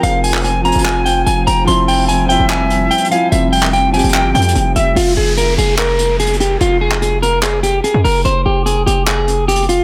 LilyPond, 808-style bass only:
\new Staff \with { instrumentName = "808-style bass" } { \clef bass \time 4/4 \key f \minor \tempo 4 = 146 f,,4.~ f,,16 f,,4~ f,,16 f,,8 f,,8 | f,,4.~ f,,16 f,,4~ f,,16 r4 | f,,4.~ f,,16 f,,8 g,,16 f,8 f,,8 f,,8 | f,,8 f,,4 f,,2~ f,,8 |
f,,2. r16 f,16 f,,8 | f,,8 f,,4 f,,2~ f,,8 | }